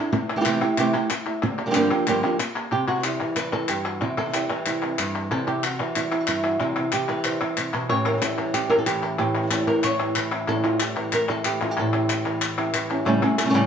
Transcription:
Already playing: E4 A4
0.00 D4
0.13 C3 E3 A3 C4 E4, muted nylon-string guitar stroke, clap
0.29 A3 C4 E4
0.36 E3 A3 E4 G4
0.41 E3 A3 E4 G4
0.45 C3 E3 A3 C4 E4 G4, clap
0.61 A3 E4 G4, clap
0.78 C3 E3 A3 E4 G4, muted nylon-string guitar stroke, clap
0.93 A3 C4 E4 G4, clap
1.10 muted nylon-string guitar stroke, clap
1.26 A3 C4 E4, clap
1.42 G2 D3 F3 A#3 D4 G4, muted nylon-string guitar stroke
1.59 F3 A#3 D4 G4
1.66 D3 F3 A#3 D4 G4
1.70 D3 F3 A#3 D4 G4, clap
1.75 G2 D3 F3 A#3 D4 G4
1.91 F3 A#3 D4 G4
2.07 G2 D3 F3 A#3 D4 G4, muted nylon-string guitar stroke, clap
2.23 F3 A#3 D4 G4, clap
2.39 muted nylon-string guitar stroke, clap
2.55 F3 A#3 D4 G4, clap
2.72 C3 G4, muted nylon-string guitar stroke, clap
2.88 F#4
2.95 E3 G3 C4 E4
2.99 E3 G3 C4 E4
3.04 C3 E3 G3 C4 E4 G4, clap
3.20 E3 G3 C4 E4, clap
3.36 C3 E3 G3 C4 E4 B4, clap
3.53 A4, clap
3.68 G2 G4, muted nylon-string guitar stroke, clap
3.85 F#4, clap
4.01 C3 E4, muted nylon-string guitar stroke
4.18 A4
4.25 E3 G3 C4 E4
4.29 E3 G3 C4 E4
4.34 C3 E3 G3 C4 E4 G4, clap
4.50 E3 G3 C4 E4, clap
4.66 C3 E3 G3 C4 E4, clap
4.82 C4, clap
4.99 G2, muted nylon-string guitar stroke, clap
5.15 clap
5.31 C3 E3 G3 C4 E4 A4
5.47 G3 C4 E4 G4
5.63 F#4, muted nylon-string guitar stroke, clap
5.79 E3 G3 C4 E4, clap
5.95 C3 E3 G3 C4 E4, clap
6.11 G3 C4 E4 G4, clap
6.20 F#4
6.27 G2 E4, muted nylon-string guitar stroke, clap
6.44 G3 C4 E4 F#4, clap
6.59 C3 E3 G3 C4 E4
6.76 G3 C4 E4
6.92 G4, muted nylon-string guitar stroke, clap
7.08 E3 G3 C4 E4 B4, clap
7.24 C3 E3 G3 C4 E4 C5, clap
7.40 G3 C4 E4
7.57 C3, muted nylon-string guitar stroke, clap
7.73 B2 G3 C4 E4, clap
7.89 A2 E3 C#4 G4 C#5, muted nylon-string guitar stroke, clap
8.05 G3 C#4 E4 A#4
8.12 E3 G3 C#4 E4
8.17 E3 G3 C#4 E4
8.22 A2 E3 G3 C#4 E4 A4, clap
8.38 E3, clap
8.53 A2 E3 G3 C#4 E4 G4, clap
8.69 A#4, clap
8.78 A4
8.86 E3 G4, muted nylon-string guitar stroke, clap
9.02 G3 C#4 E4 A4, clap
9.19 A2 G4, muted nylon-string guitar stroke
9.35 G3 C#4 E4
9.42 E3 G3 C#4 E4
9.46 E3 G3 C#4 E4
9.51 A2 E3 G3 C#4 E4 A4, clap
9.67 E3 A#4
9.83 A2 E3 G3 C#4 E4 C#5, clap
10.00 G4, clap
10.15 E3, muted nylon-string guitar stroke, clap
10.31 G3 C#4 E4
10.47 A2 E3 G3 C#4 E4 A4, clap
10.64 G3 C#4 E4 F4
10.80 E3 G3 E4 G4, clap
10.96 E3, clap
11.12 A#4, muted nylon-string guitar stroke, clap
11.28 G3 C#4 E4 A4, clap
11.45 E3 G4, clap
11.61 G3 C#4 E4 F4, clap
11.71 G4
11.77 A2 E3 G3 C#4 E4 A4, clap
11.93 G3 C#4 E4 G4
12.10 E3 G3 C#4 E4, clap
12.26 E3, clap
12.41 muted nylon-string guitar stroke, clap
12.58 G3 C#4 E4 G4
12.74 E3, clap
12.90 G3 C#4 E4, clap
13.05 A2 C#3 E3 G3 A3 C#4 E4 A4
13.22 G3 A3 C#4 E4 A4
13.38 E3 G3 A3 C#4 E4 A4, clap
13.45 C#3 G3 A3 C#4 A4
13.50 C#3 G3 A3 C#4 A4
13.54 A2 C#3 G3 A3 C#4 E4 A4

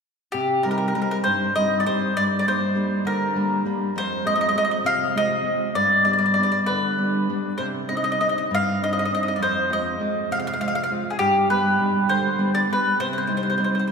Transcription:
0.32 C3 G4
0.63 G3 C4 D#4 A#4
0.71 A#4
0.78 A#4
0.88 A#4
0.95 G3 C4 D#4 A#4
1.02 A#4
1.11 A#4
1.24 G2 C5
1.56 G3 C4 D#4 D#5
1.80 D5
1.86 G3 C4 D#4 C5
2.17 G2 D5
2.39 D5
2.48 G3 A#3 D4 C5
2.75 G3 A#3 D4
3.05 D3 A#4
3.36 G3 A#3 D4
3.65 G3 A#3 D4
3.96 F2 C5
4.25 G#3 C4 F4 D#5
4.36 D#5
4.41 D#5
4.49 D#5
4.54 G#3 C4 F4 D#5
4.65 D#5
4.71 D#5
4.84 C3 F5
5.15 G#3 C4 F4 D#5
5.43 G#3 C4 F4
5.75 G2 D5
6.05 G3 B3 D4 D5
6.13 D5
6.19 D5
6.26 D5
6.34 G3 D5
6.39 B3 D4
6.43 D5
6.52 D5
6.66 D3 B4
6.98 G3 B3 D4
7.29 G3 B3 D4
7.58 C3 C5
7.89 C4 D4 D#4 D#5
7.97 D#5
8.04 D#5
8.12 D#5
8.20 C4 D4 D#4 D#5
8.29 D#5
8.38 D#5
8.51 G2 F5
8.82 C4 D4 D#4 D#5
8.93 D#5
8.99 D#5
9.05 D#5
9.11 C4 D4 D#4 D#5
9.23 D#5
9.28 D#5
9.36 F2 D5
9.43 C5
9.69 G#3 C4 F4 D#5
10.00 G#3 C4 F4
10.31 C3 F5
10.40 F5
10.47 F5
10.53 F5
10.60 G#3 C4 F4 F5
10.68 F5
10.75 F5
10.84 F5
10.91 G#3 C4 F4
11.10 G#4
11.19 G2 G4
11.50 G3 B3 D4 B4
11.79 B2 G3 D4
12.08 D3 C5
12.38 G3 B3 D4
12.55 D5
12.70 G3 B3 D4 B4
13.00 C3 C5
13.13 C5
13.18 C5
13.27 G3 C4 D#4 C5
13.37 C5
13.43 C5
13.50 C5
13.58 G3 C4 D#4 C5
13.64 C5
13.75 C5
13.79 C5
13.88 C5

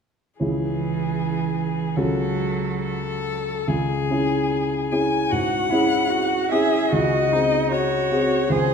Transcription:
0.40 C#2 E3 C#4 E4 G#4
1.96 C#2 F#3 C#4 F#4 A4
2.80 A4
3.68 C#2 G#4
4.10 C#4 E4 G#4
4.92 C#4 E4 G#4 G#5
5.30 G#2 F#4 F#5
5.69 C#4 E4 G#4
6.10 F#4
6.52 C#4 E4 G#4 E5
6.92 C#2 F#4 D#5
7.32 C4 D#4 F#4 G#4
7.71 F#4 C#5
8.11 C4 F#4 G#4
8.50 C#2 G#4 C5

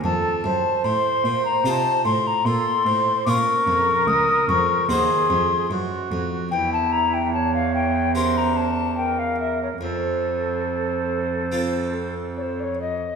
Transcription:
0.04 F2 A4 A5
0.44 F#2 C5
0.84 A2 C6
1.24 A#2
1.45 A#5
1.64 C3 D#4 F4 C5 A#5
1.70 A5
2.05 A2 C6
2.27 A#5
2.45 A#2 A4 C6
2.85 A2 C5
3.26 A#2 C#4 F4 A#4 C#6 D6
3.67 F2
4.07 C#2 D#6
4.48 F2 C#6
4.89 D#2 D#4 F#4 G#4 C5 C6
5.30 F2
5.70 F#2 F#4
6.11 F2
6.51 E2 E4 G5
6.73 A5
6.92 A#5
7.14 G5
7.33 C#5 A5
7.55 F5
7.75 G5
8.15 C#4 G4 A#4 C5 C6
8.37 A#5
8.57 A5
8.97 A#4 G5
9.19 F5
9.40 E5
9.63 C#5
9.81 F2 A4 C5
11.52 C4 F4 A4
12.37 C#5
12.42 C5
12.60 C#5 D5
12.81 D#5

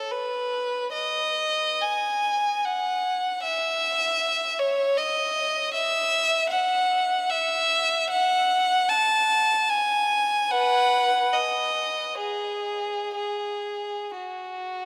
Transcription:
Already playing: A4
0.11 B4
0.92 D#5
1.81 G#5
2.65 F#5
3.42 E5
4.59 C#5
4.98 D#5
5.74 E5
6.49 F#5
7.29 E5
8.10 F#5
8.89 A5
9.70 G#5
10.51 B4 F#5
11.33 D#5
12.19 G#4
13.16 G#4
14.17 F#4

